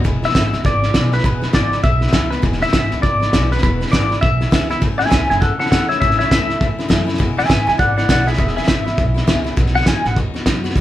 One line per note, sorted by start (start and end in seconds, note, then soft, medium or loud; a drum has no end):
0.04 0.27 E1 medium
0.04 0.23 E2 medium
0.04 0.23 B2 medium
0.04 0.23 E3 medium
0.04 0.23 G#3 medium
0.04 0.22 B3 medium
0.04 0.21 E4 loud
0.04 kick loud
0.04 snare soft
0.22 0.35 E3 soft
0.22 0.34 G#3 medium
0.22 0.35 B3 medium
0.22 0.34 E4 medium
0.22 0.64 E5 loud
0.22 snare soft
0.29 snare soft
0.34 0.48 G#1 medium
0.34 0.53 E2 medium
0.34 0.53 B2 medium
0.34 0.54 E3 medium
0.34 0.53 G#3 medium
0.34 0.53 B3 medium
0.34 0.51 E4 medium
0.34 kick loud
0.34 snare loud
0.34 hi-hat pedal loud
0.53 0.62 C#2 loud
0.53 0.63 E3 soft
0.53 0.64 G#3 soft
0.53 0.65 B3 medium
0.53 0.64 E4 soft
0.53 snare soft
0.64 0.86 G#1 medium
0.64 0.83 E3 medium
0.64 0.83 G#3 medium
0.64 0.83 B3 medium
0.64 0.82 E4 medium
0.64 1.12 D5 medium
0.64 kick loud
0.64 snare soft
0.83 0.94 E3 soft
0.83 0.94 G#3 soft
0.83 0.94 B3 medium
0.83 0.95 E4 medium
0.83 snare soft
0.94 1.17 B1 loud
0.94 1.13 E2 medium
0.94 1.13 B2 medium
0.94 1.13 E3 medium
0.94 1.13 G#3 medium
0.94 1.12 B3 medium
0.94 1.11 E4 medium
0.94 kick medium
0.94 snare loud
0.94 hi-hat pedal medium
1.12 1.24 E3 soft
1.12 1.25 G#3 medium
1.12 1.25 B3 medium
1.12 1.24 E4 medium
1.12 1.24 B4 loud
1.12 snare soft
1.18 snare soft
1.23 1.46 E1 medium
1.23 1.43 E2 medium
1.23 1.43 B2 medium
1.23 1.43 E3 medium
1.23 1.42 G#3 medium
1.23 1.41 B3 medium
1.23 1.40 E4 medium
1.23 1.54 B4 medium
1.23 kick loud
1.23 snare soft
1.42 1.53 E3 soft
1.42 1.53 G#3 soft
1.42 1.53 B3 medium
1.42 1.54 E4 medium
1.42 snare soft
1.53 1.76 G#1 medium
1.53 1.72 E2 medium
1.53 1.72 B2 medium
1.53 1.72 E3 medium
1.53 1.72 G#3 medium
1.53 1.71 B3 medium
1.53 1.70 E4 medium
1.53 1.83 D5 medium
1.53 kick medium
1.53 snare loud
1.53 hi-hat pedal medium
1.72 1.82 E3 soft
1.72 1.82 G#3 soft
1.72 1.84 B3 soft
1.72 1.84 E4 soft
1.72 snare soft
1.83 2.06 B1 loud
1.83 2.02 E3 medium
1.83 2.02 G#3 medium
1.83 2.01 B3 medium
1.83 2.00 E4 medium
1.83 2.30 E5 medium
1.83 kick loud
1.83 snare soft
2.01 2.12 E3 soft
2.01 2.13 G#3 soft
2.01 2.13 B3 medium
2.01 2.13 E4 medium
2.01 snare soft
2.07 snare soft
2.13 2.35 C#2 medium
2.13 2.31 E2 medium
2.13 2.32 B2 medium
2.13 2.32 E3 medium
2.13 2.32 G#3 loud
2.13 2.31 B3 medium
2.13 2.31 E4 medium
2.13 kick medium
2.13 snare loud
2.13 hi-hat pedal medium
2.31 2.42 G#3 medium
2.31 2.42 B3 medium
2.31 2.43 E4 medium
2.31 2.42 B4 loud
2.31 snare soft
2.35 2.41 E3 soft
2.42 2.65 E1 medium
2.42 2.61 E2 medium
2.42 2.61 B2 medium
2.42 2.61 E3 medium
2.42 2.61 G#3 medium
2.42 2.60 B3 medium
2.42 2.59 E4 medium
2.42 kick loud
2.42 snare soft
2.52 snare soft
2.60 2.72 E3 soft
2.60 2.73 G#3 soft
2.60 2.73 B3 medium
2.60 2.73 E4 medium
2.60 3.02 E5 loud
2.60 snare soft
2.67 snare soft
2.72 2.87 G#1 medium
2.72 2.91 E2 medium
2.72 2.92 B2 medium
2.72 2.92 E3 medium
2.72 2.92 G#3 medium
2.72 2.91 B3 medium
2.72 2.90 E4 medium
2.72 kick loud
2.72 snare loud
2.72 hi-hat pedal loud
2.91 3.00 C#2 medium
2.91 3.01 E3 soft
2.91 3.03 G#3 soft
2.91 3.03 B3 medium
2.91 3.03 E4 medium
2.91 snare soft
3.02 3.25 G#1 medium
3.02 3.21 E3 medium
3.02 3.21 G#3 medium
3.02 3.20 B3 medium
3.02 3.19 E4 medium
3.02 3.49 D5 medium
3.02 kick loud
3.02 snare soft
3.20 3.33 E3 soft
3.20 3.33 G#3 soft
3.20 3.33 B3 medium
3.20 3.32 E4 medium
3.20 snare soft
3.33 3.55 B1 medium
3.33 3.51 E2 medium
3.33 3.52 B2 medium
3.33 3.52 E3 loud
3.33 3.52 G#3 medium
3.33 3.51 B3 loud
3.33 3.50 E4 medium
3.33 kick medium
3.33 snare loud
3.33 hi-hat pedal medium
3.51 3.63 E3 medium
3.51 3.63 G#3 medium
3.51 3.63 B3 medium
3.51 3.63 E4 medium
3.51 3.62 B4 medium
3.51 snare soft
3.58 snare soft
3.63 3.85 E1 medium
3.63 3.81 E2 medium
3.63 3.81 B2 medium
3.63 3.82 E3 medium
3.63 3.81 G#3 medium
3.63 3.80 B3 medium
3.63 3.79 E4 medium
3.63 3.92 B4 medium
3.63 kick loud
3.63 snare soft
3.81 3.91 E3 soft
3.81 3.92 G#3 medium
3.81 3.92 E4 medium
3.81 snare soft
3.87 snare soft
3.92 4.15 G#1 medium
3.92 4.10 E2 medium
3.92 4.11 B2 medium
3.92 4.11 E3 medium
3.92 4.10 G#3 medium
3.92 4.09 B3 medium
3.92 4.08 E4 medium
3.92 4.21 D5 medium
3.92 kick loud
3.92 snare loud
3.92 hi-hat pedal loud
4.10 4.20 E3 soft
4.10 4.21 G#3 soft
4.10 4.22 B3 medium
4.10 4.22 E4 medium
4.10 snare soft
4.21 4.44 B1 loud
4.21 4.40 E3 medium
4.21 4.41 G#3 medium
4.21 4.40 B3 medium
4.21 4.40 E4 medium
4.21 4.68 E5 medium
4.21 kick loud
4.21 snare soft
4.41 4.51 E3 soft
4.41 4.51 G#3 soft
4.41 4.52 B3 soft
4.41 4.52 E4 medium
4.41 snare soft
4.51 4.74 C#2 medium
4.51 4.70 E2 medium
4.51 4.70 B2 medium
4.51 4.70 E3 medium
4.51 4.69 G#3 medium
4.51 4.69 B3 medium
4.51 4.68 E4 medium
4.51 kick medium
4.51 snare loud
4.51 hi-hat pedal medium
4.69 4.80 E3 soft
4.69 4.82 G#3 soft
4.69 4.82 B3 medium
4.69 4.81 E4 medium
4.69 4.82 E4 medium
4.69 snare soft
4.81 5.04 A1 medium
4.81 5.00 A2 medium
4.81 5.00 E3 medium
4.81 5.00 A3 medium
4.81 5.00 C#4 medium
4.81 4.98 E4 medium
4.81 kick loud
4.81 snare soft
4.98 5.10 C#4 soft
4.98 5.11 E4 medium
4.98 5.08 E5 medium
4.98 5.10 G#5 loud
4.98 snare soft
5.02 5.09 A3 medium
5.02 snare soft
5.10 5.25 C#2 medium
5.10 5.29 A2 medium
5.10 5.29 E3 medium
5.10 5.29 A3 medium
5.10 5.30 C#4 medium
5.10 5.28 E4 medium
5.10 5.28 E5 medium
5.10 5.29 G#5 loud
5.10 kick loud
5.10 snare loud
5.10 hi-hat pedal loud
5.29 5.39 F#1 loud
5.29 5.40 A3 soft
5.29 5.41 C#4 soft
5.29 5.41 E4 medium
5.29 5.40 E5 medium
5.29 5.41 G#5 medium
5.29 snare soft
5.40 5.64 C#2 loud
5.40 5.59 E3 medium
5.40 5.60 A3 medium
5.40 5.60 C#4 medium
5.40 5.58 E4 medium
5.40 5.58 A4 medium
5.40 5.59 F#5 medium
5.40 kick loud
5.40 snare soft
5.59 5.71 A3 soft
5.59 5.72 C#4 soft
5.59 5.71 E4 medium
5.59 5.69 A4 medium
5.59 5.70 F#5 medium
5.59 snare soft
5.66 snare soft
5.70 5.94 E2 medium
5.70 5.90 A2 medium
5.70 5.90 E3 medium
5.70 5.90 A3 loud
5.70 5.90 C#4 medium
5.70 5.88 E4 medium
5.70 5.88 A4 medium
5.70 5.89 F#5 medium
5.70 kick medium
5.70 snare loud
5.70 hi-hat pedal medium
5.89 6.02 C#4 medium
5.89 6.01 E4 medium
5.89 5.99 C#5 medium
5.89 5.99 E5 medium
5.89 snare soft
5.93 6.02 A3 soft
6.00 6.23 A1 medium
6.00 6.20 A2 medium
6.00 6.20 E3 medium
6.00 6.20 A3 medium
6.00 6.20 C#4 medium
6.00 6.19 E4 medium
6.00 6.17 C#5 medium
6.00 6.18 E5 medium
6.00 kick loud
6.00 snare soft
6.11 snare soft
6.18 6.32 C#4 medium
6.18 6.31 E4 medium
6.18 6.29 C#5 medium
6.18 6.30 E5 loud
6.18 snare soft
6.22 6.32 A3 soft
6.31 6.53 C#2 medium
6.31 6.49 A2 medium
6.31 6.50 E3 medium
6.31 6.49 A3 medium
6.31 6.49 C#4 medium
6.31 6.47 E4 medium
6.31 7.18 E5 loud
6.31 kick loud
6.31 snare loud
6.31 hi-hat pedal medium
6.48 6.61 A3 soft
6.48 6.61 C#4 soft
6.48 6.60 E4 medium
6.48 snare soft
6.61 6.83 E2 medium
6.61 6.79 E3 medium
6.61 6.79 A3 medium
6.61 6.79 C#4 medium
6.61 6.77 E4 medium
6.61 kick loud
6.61 snare soft
6.78 6.88 A3 soft
6.78 6.88 C#4 medium
6.78 6.89 E4 medium
6.78 snare soft
6.88 7.21 F#2 medium
6.88 7.07 A2 medium
6.88 7.08 E3 loud
6.88 7.08 A3 loud
6.88 7.07 C#4 loud
6.88 7.05 E4 loud
6.88 kick medium
6.88 snare loud
6.88 hi-hat pedal medium
7.07 7.19 A3 medium
7.07 7.19 C#4 medium
7.07 7.19 E4 medium
7.07 snare soft
7.14 snare soft
7.18 7.42 E1 medium
7.18 7.37 E2 medium
7.18 7.37 B2 medium
7.18 7.37 E3 medium
7.18 7.37 G#3 loud
7.18 7.36 B3 loud
7.18 7.36 E4 loud
7.18 kick loud
7.18 snare soft
7.37 7.48 E3 medium
7.37 7.48 G#3 soft
7.37 7.49 B3 medium
7.37 7.48 E4 medium
7.37 7.49 E5 medium
7.37 7.49 G#5 medium
7.37 snare soft
7.44 7.67 E2 medium
7.44 7.67 B2 medium
7.44 snare soft
7.49 7.63 G#1 medium
7.49 7.67 E3 medium
7.49 7.67 G#3 medium
7.49 7.66 B3 medium
7.49 7.65 E4 medium
7.49 7.66 E5 medium
7.49 7.67 G#5 loud
7.49 kick medium
7.49 snare loud
7.49 hi-hat pedal loud
7.66 7.76 C#2 loud
7.66 7.77 E3 soft
7.66 7.78 G#3 soft
7.66 7.79 B3 medium
7.66 7.78 E4 medium
7.66 7.78 E5 medium
7.66 7.79 G#5 medium
7.66 snare soft
7.78 8.01 G#1 medium
7.78 7.97 E3 medium
7.78 7.98 G#3 medium
7.78 7.97 B3 medium
7.78 7.96 E4 medium
7.78 7.96 D5 medium
7.78 7.96 F#5 loud
7.78 kick loud
7.78 snare soft
7.97 8.08 E3 soft
7.97 8.09 G#3 soft
7.97 8.09 B3 medium
7.97 8.09 E4 medium
7.97 8.08 D5 medium
7.97 8.08 F#5 medium
7.97 snare soft
8.09 8.31 B1 medium
8.09 8.27 E2 medium
8.09 8.27 B2 medium
8.09 8.27 E3 medium
8.09 8.27 G#3 medium
8.09 8.26 B3 medium
8.09 8.25 E4 loud
8.09 8.26 D5 medium
8.09 8.27 F#5 medium
8.09 kick medium
8.09 snare loud
8.09 hi-hat pedal medium
8.27 8.37 E3 soft
8.27 8.38 G#3 medium
8.27 8.38 B3 medium
8.27 8.38 E4 medium
8.27 8.37 G#4 medium
8.27 8.38 E5 medium
8.27 snare soft
8.33 snare soft
8.38 8.60 E1 medium
8.38 8.56 E2 medium
8.38 8.56 B2 medium
8.38 8.57 E3 medium
8.38 8.56 G#3 medium
8.38 8.55 B3 medium
8.38 8.54 E4 medium
8.38 8.55 G#4 medium
8.38 8.56 E5 medium
8.38 kick loud
8.38 snare soft
8.47 snare soft
8.55 8.67 E3 soft
8.55 8.67 G#3 medium
8.55 8.67 B3 soft
8.55 8.67 E4 medium
8.55 8.67 G#4 medium
8.55 8.67 E5 loud
8.55 snare soft
8.62 8.85 E2 medium
8.62 snare soft
8.67 8.90 G#1 medium
8.67 8.86 B2 medium
8.67 8.86 E3 medium
8.67 8.86 G#3 medium
8.67 8.86 B3 medium
8.67 8.84 E4 medium
8.67 9.54 E5 loud
8.67 kick loud
8.67 snare loud
8.67 hi-hat pedal loud
8.85 8.96 E3 soft
8.85 8.96 G#3 soft
8.85 8.97 B3 soft
8.85 8.97 E4 medium
8.85 snare soft
8.97 9.20 B1 medium
8.97 9.16 E3 medium
8.97 9.15 G#3 medium
8.97 9.14 B3 medium
8.97 9.13 E4 medium
8.97 kick loud
8.97 snare soft
9.14 9.27 E3 medium
9.14 9.27 G#3 medium
9.14 9.27 B3 medium
9.14 9.27 E4 medium
9.14 snare soft
9.27 9.50 C#2 loud
9.27 9.46 E2 loud
9.27 9.46 B2 loud
9.27 9.46 E3 loud
9.27 9.46 G#3 loud
9.27 9.45 B3 loud
9.27 9.43 E4 loud
9.27 kick medium
9.27 snare loud
9.27 hi-hat pedal medium
9.44 9.57 E3 medium
9.44 9.57 G#3 medium
9.44 9.57 B3 medium
9.44 9.56 E4 medium
9.44 snare soft
9.57 9.79 B1 medium
9.57 9.75 B2 loud
9.57 9.76 F#3 medium
9.57 9.76 B3 medium
9.57 9.75 D#4 loud
9.57 9.74 F#4 medium
9.57 kick loud
9.57 snare soft
9.66 snare soft
9.75 9.87 B3 soft
9.75 9.87 D#4 medium
9.75 9.87 F#4 medium
9.75 9.86 F#5 loud
9.75 snare soft
9.81 snare soft
9.86 10.00 D#2 medium
9.86 10.05 B2 medium
9.86 10.05 F#3 medium
9.86 10.06 B3 medium
9.86 10.05 D#4 medium
9.86 10.04 F#4 medium
9.86 10.06 G#5 medium
9.86 kick medium
9.86 snare loud
9.86 hi-hat pedal loud
10.05 10.14 A1 loud
10.05 10.16 B3 soft
10.05 10.17 D#4 soft
10.05 10.16 F#4 medium
10.05 10.17 F#5 loud
10.05 snare soft
10.16 10.38 D#2 loud
10.16 10.35 F#3 medium
10.16 10.35 B3 medium
10.16 10.34 D#4 medium
10.16 10.33 F#4 medium
10.16 kick loud
10.16 snare soft
10.34 10.46 B3 medium
10.34 10.46 D#4 medium
10.34 10.46 F#4 medium
10.34 snare soft
10.46 10.68 F#2 medium
10.46 10.64 B2 medium
10.46 10.64 F#3 loud
10.46 10.65 B3 loud
10.46 10.64 D#4 loud
10.46 10.63 F#4 loud
10.46 kick medium
10.46 snare loud
10.46 hi-hat pedal medium
10.64 10.76 B3 medium
10.64 10.76 D#4 medium
10.64 10.76 F#4 medium
10.64 snare soft
10.70 snare soft
10.75 10.81 B1 medium
10.75 10.81 B2 medium
10.75 10.81 F#3 medium
10.75 10.81 B3 medium
10.75 kick loud
10.75 snare soft